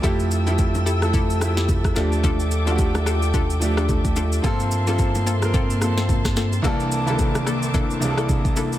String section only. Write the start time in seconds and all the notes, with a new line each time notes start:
0.04 A4 E5 G5 E6
1.96 G5 D6
4.44 A#3 A5 C6
6.64 A#3 C4 E5 D6